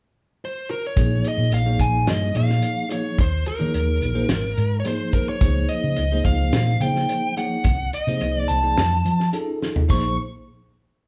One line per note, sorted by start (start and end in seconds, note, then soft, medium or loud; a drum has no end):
0.45 0.70 C5 medium
0.71 0.85 A#4 medium
0.87 1.28 C#5 medium
0.96 1.21 A#1 medium
0.96 1.59 F3 medium
0.96 1.59 A#3 medium
0.96 1.59 D#4 medium
0.96 1.59 G#4 medium
0.96 1.60 C#5 medium
0.96 kick medium
0.96 closed hi-hat medium
1.25 1.53 D#5 medium
1.25 closed hi-hat medium
1.38 1.50 A#2 medium
1.52 1.76 A#1 medium
1.52 1.82 F5 medium
1.52 closed hi-hat medium
1.65 2.28 F3 medium
1.65 2.28 A#3 medium
1.65 2.28 D#4 medium
1.65 2.28 G#4 medium
1.65 2.28 C#5 medium
1.79 2.04 A#1 medium
1.79 2.09 G#5 medium
1.79 kick medium
1.79 closed hi-hat medium
2.06 2.31 G2 medium
2.06 2.37 D#5 medium
2.06 snare medium
2.06 closed hi-hat medium
2.34 2.60 A#2 medium
2.34 2.85 F3 medium
2.34 2.85 A#3 medium
2.34 2.85 D#4 medium
2.34 2.85 G#4 medium
2.34 2.85 C#5 medium
2.34 2.88 F5 medium
2.34 closed hi-hat medium
2.50 snare soft
2.62 closed hi-hat medium
2.89 3.18 F3 medium
2.89 3.18 A#3 medium
2.89 3.18 D#4 medium
2.89 3.18 G#4 medium
2.89 3.18 C#5 medium
2.89 closed hi-hat medium
3.18 3.43 D#2 medium
3.18 3.47 C5 medium
3.18 kick medium
3.18 closed hi-hat medium
3.46 4.76 A#4 medium
3.46 closed hi-hat medium
3.59 3.73 D#3 medium
3.59 4.10 F3 medium
3.59 4.10 A#3 medium
3.59 4.10 D#4 medium
3.59 4.10 G#4 medium
3.59 4.10 C#5 medium
3.74 3.99 D#2 medium
3.74 closed hi-hat medium
4.02 4.26 A#1 medium
4.02 closed hi-hat soft
4.15 4.29 F3 medium
4.15 4.29 A#3 medium
4.15 4.30 D#4 medium
4.15 4.30 G#4 medium
4.15 4.30 C5 medium
4.29 4.54 G#1 medium
4.29 snare medium
4.29 closed hi-hat medium
4.57 4.82 G#2 medium
4.57 closed hi-hat medium
4.80 4.86 C#5 medium
4.85 5.35 F3 medium
4.85 5.36 A#3 medium
4.85 5.36 D#4 medium
4.85 5.36 G#4 medium
4.85 5.36 C5 medium
4.85 5.14 C5 medium
4.85 closed hi-hat medium
5.13 5.29 A#4 medium
5.13 kick medium
5.13 closed hi-hat medium
5.29 5.67 C#5 medium
5.40 5.65 C#2 medium
5.40 6.04 F3 medium
5.40 6.04 A#3 medium
5.40 6.04 D#4 medium
5.40 6.04 G#4 medium
5.40 6.04 C5 medium
5.40 kick loud
5.40 closed hi-hat medium
5.69 6.25 D#5 medium
5.69 closed hi-hat medium
5.84 5.96 C#3 medium
5.96 6.22 C#2 medium
5.96 closed hi-hat medium
6.12 6.74 F3 medium
6.12 6.74 A#3 medium
6.12 6.74 D#4 medium
6.12 6.74 G#4 medium
6.12 6.75 C5 medium
6.25 6.49 C#2 medium
6.25 6.81 F5 medium
6.25 kick medium
6.25 closed hi-hat soft
6.52 6.77 A#2 medium
6.52 snare medium
6.52 closed hi-hat medium
6.80 7.05 C#3 medium
6.80 7.31 F3 medium
6.80 7.31 A#3 medium
6.80 7.32 D#4 medium
6.80 7.32 G#4 medium
6.80 7.32 C5 medium
6.80 7.34 G5 medium
6.80 closed hi-hat medium
6.96 snare soft
7.09 closed hi-hat medium
7.36 7.65 F3 medium
7.36 7.65 A#3 medium
7.36 7.65 D#4 medium
7.36 7.65 G#4 medium
7.36 7.65 C#5 medium
7.36 7.90 F#5 medium
7.36 closed hi-hat medium
7.64 7.89 C2 medium
7.64 kick medium
7.64 closed hi-hat medium
7.93 8.36 D#5 medium
7.93 closed hi-hat medium
8.07 8.19 C3 medium
8.07 8.58 F3 medium
8.07 8.57 A#3 medium
8.07 8.58 D#4 medium
8.07 8.58 G#4 soft
8.07 8.58 C5 medium
8.21 8.46 C2 medium
8.21 closed hi-hat medium
8.36 8.52 D5 medium
8.48 8.74 C2 medium
8.48 9.29 A5 medium
8.48 closed hi-hat soft
8.63 8.77 F3 medium
8.63 8.78 A#3 medium
8.63 8.78 D#4 medium
8.63 8.78 G#4 medium
8.63 8.78 D5 medium
8.77 9.02 F2 medium
8.77 snare medium
8.77 closed hi-hat medium
9.05 9.29 F3 medium
9.05 closed hi-hat soft
9.20 snare soft
9.33 9.83 C#4 medium
9.33 9.83 D#4 medium
9.33 9.84 F4 medium
9.33 9.83 G#4 medium
9.33 9.84 A4 medium
9.33 closed hi-hat medium
9.62 snare medium
9.76 floor tom medium
9.88 10.16 A#1 medium
9.88 10.15 F3 medium
9.88 10.15 A#3 medium
9.88 10.15 D#4 medium
9.88 10.15 G#4 medium
9.88 10.15 C5 medium
9.88 10.16 C#6 medium
9.88 kick medium
9.88 crash medium